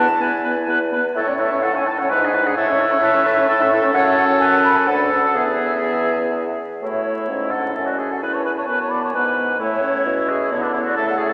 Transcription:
Already playing: E2 E4 A5
0.20 E2 B3 B4 G#5
0.44 B3 B4
0.67 E2 B3 B4
0.92 B3 B4
1.15 A2 E4 A4 C#5 E5
1.27 C#4 C#5 D5
1.39 E4 A4 E5
1.51 C#4 C#5
1.62 E4 A4 F#5
1.75 C#4 C#5 G#5
1.87 E4 A4 A5
1.99 C#4 C#5 F#5
2.09 G#2 E4 B4 G#5
2.22 D4 G#4
2.33 E4 B4
2.44 D4 G#4 F#5
2.56 A2 E4 A4 C#5 E5
2.68 C#4 C#5
2.80 E4 A4
2.92 C#4 C#5
3.02 E4 A4 B4
3.13 C#4 C#5
3.26 E4 A4
3.37 C#4 C#5
3.48 E4 A4
3.61 C#4 C#5
3.72 E4 A4
3.83 C#4 C#5
3.93 F#2 C#4 A4 C#5 F#5
4.05 E5
4.17 F#5
4.40 B4 G#5
4.54 A5
4.64 B5
4.76 G#5
4.87 D2 D4 A4 F#5
5.11 C#4
5.35 E2 B3 G#4 E5
6.81 A2 A3 E4 F#4 C#5
7.29 G#2 C#4 E4
7.51 D4 A4 F#5
7.74 F#2 C#4 A4 E5
7.86 F#4 D5
7.99 G#4 E5
8.10 A4 F#5
8.21 E2 C#4 E4 B4 G#5
8.34 C#5 A5
8.45 B4 G#5
8.56 C#5 A5
8.66 F#2 B3 B4 G#5
8.70 E4
8.78 C#5 A5
8.89 D5 B5
9.01 C#5 A5
9.11 G#2 B3 B4 G#5
9.58 A2 A3 E4 C#5
9.82 C#4
10.06 B2 F#4
10.28 G#4 E5
10.52 D3 B3 E4 C#5
10.62 D4 B4
10.74 E4 C#5
10.85 F#4 D5
10.96 C#3 A3 A4 E5
11.07 A4 F#5
11.18 G#4 E5
11.28 A4

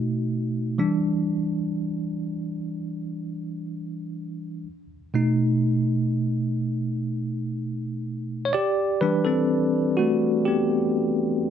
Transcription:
Already playing: B2 A3 D#4
0.78 E3 G3 D4
5.14 B2 A3 D#4
8.45 C#5
8.53 G4 D5
9.01 E3 G3 D4 B4
9.25 C4 A4
9.97 A3 F#4
10.45 B3 G4

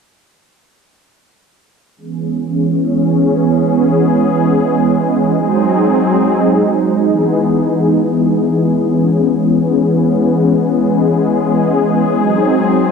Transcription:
1.97 E3 G#3 B3 C#4 G#4
5.37 F#3 C4 D#4 G#4
7.08 E3 B3 G#4
8.78 G#3 C#4
12.18 F#3 C4 D#4

